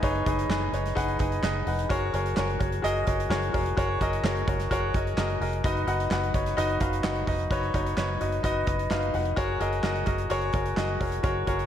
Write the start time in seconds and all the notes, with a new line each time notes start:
Already playing: D#4 G#4 B4 C#5 D#5 F5 F#5, downlifter
0.02 F#1 D#4 G#4 B4 C#5, kick, closed hi-hat
0.15 closed hi-hat
0.26 F#1 D#4 G#4 B4 D#5, kick, closed hi-hat
0.39 closed hi-hat
0.49 F#1 D#4 G#4 B4 D#5, snare, clap
0.72 F#1 D#4 G#4 B4 C#5, closed hi-hat
0.86 snare, closed hi-hat
0.95 F#1 D#4 G#4 B4 F#5, kick, closed hi-hat
1.08 closed hi-hat
1.18 F#1 D#4 G#4 B4 D#5, kick, closed hi-hat
1.32 closed hi-hat
1.42 F#1 D#4 G#4 B4 D#5, snare, clap
1.66 F1 D#4 G#4 B4 F#5, open hi-hat
1.79 closed hi-hat
1.89 F#1 F#4 G#4 A#4 C#5, kick, closed hi-hat
2.13 F#1 F#4 G#4 A#4 C#5, closed hi-hat
2.26 closed hi-hat
2.37 F#1 F#4 G#4 A#4 C#5, snare, clap
2.50 closed hi-hat
2.59 F#1 F#4 G#4 A#4 C#5, kick, closed hi-hat
2.72 closed hi-hat
2.82 F#1 F#4 G#4 A#4 D#5, closed hi-hat
2.96 closed hi-hat
3.06 F#1 F#4 G#4 A#4 C#5, kick, closed hi-hat
3.20 closed hi-hat
3.30 F#1 F#4 G#4 A#4 C#5, snare, clap
3.43 closed hi-hat
3.53 F1 F#4 G#4 A#4 C#5, kick, open hi-hat
3.66 closed hi-hat
3.77 F#1 F#4 G#4 A#4 C#5, kick, closed hi-hat
4.01 F#1 F#4 G#4 A#4 D#5, kick, closed hi-hat
4.13 closed hi-hat
4.23 F#1 F#4 G#4 A#4 C#5, snare, clap
4.37 closed hi-hat
4.47 F#1 F#4 G#4 A#4 C#5, kick, closed hi-hat
4.60 snare, closed hi-hat
4.71 F#1 F#4 G#4 A#4 C#5, kick, closed hi-hat
4.94 F#1 F#4 G#4 A#4 D#5, kick, closed hi-hat
5.07 closed hi-hat
5.17 F#1 F#4 G#4 A#4 D#5, snare, clap
5.30 closed hi-hat
5.40 F1 F#4 G#4 A#4 D#5, open hi-hat
5.53 closed hi-hat
5.64 F#1 D#4 F#4 B4 D#5, kick, closed hi-hat
5.77 closed hi-hat
5.87 F#1 D#4 F#4 B4 F#5, closed hi-hat
6.00 closed hi-hat
6.11 F#1 D#4 F#4 B4 F#5, snare, clap
6.23 closed hi-hat
6.34 F#1 D#4 F#4 B4 C#5, kick, closed hi-hat
6.46 snare, closed hi-hat
6.57 F#1 D#4 F#4 B4 D#5, closed hi-hat
6.69 closed hi-hat
6.80 F#1 D#4 F#4 B4 F5, kick, closed hi-hat
6.93 closed hi-hat
7.03 F#1 D#4 F#4 B4 F#5, snare, clap
7.15 closed hi-hat
7.27 F1 D#4 F#4 B4 D#5, kick, open hi-hat
7.39 closed hi-hat
7.50 F#1 D#4 F#4 B4 C#5, kick, closed hi-hat
7.63 closed hi-hat
7.74 F#1 D#4 F#4 B4 C#5, kick, closed hi-hat
7.86 closed hi-hat
7.97 F#1 D#4 F#4 B4 C#5, snare, clap
8.20 F#1 D#4 F#4 B4 D#5, closed hi-hat
8.32 closed hi-hat
8.43 F#1 D#4 F#4 B4 D#5, kick, closed hi-hat
8.67 F#1 D#4 F#4 B4 D#5, kick, closed hi-hat
8.79 closed hi-hat
8.90 F#1 D#4 F#4 B4 F5, snare, clap
9.03 closed hi-hat
9.14 F1 D#4 F#4 B4 F#5, open hi-hat
9.25 closed hi-hat
9.36 F#1 F#4 G#4 A#4 C#5, kick, closed hi-hat
9.60 F#1 F#4 G#4 A#4 D#5, closed hi-hat
9.73 closed hi-hat
9.83 F#1 F#4 G#4 A#4 D#5, snare, clap
9.95 closed hi-hat
10.06 F#1 F#4 G#4 A#4 D#5, kick, closed hi-hat
10.18 closed hi-hat
10.30 F#1 F#4 G#4 A#4 C#5, closed hi-hat
10.41 closed hi-hat
10.53 F#1 F#4 G#4 A#4 C#5, kick, closed hi-hat
10.66 closed hi-hat
10.76 F#1 F#4 G#4 A#4 D#5, snare, clap
11.00 F1 F#4 G#4 A#4 C#5, kick, open hi-hat
11.12 closed hi-hat
11.23 F#1 F#4 G#4 A#4 C#5, kick, closed hi-hat
11.47 F#1 F#4 G#4 A#4 C#5, kick, closed hi-hat
11.59 closed hi-hat